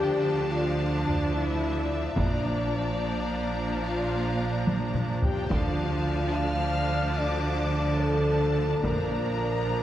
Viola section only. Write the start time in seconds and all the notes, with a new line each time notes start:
Already playing: F3 D4
2.17 F3 D4
5.51 F3 D4
8.83 F3 D4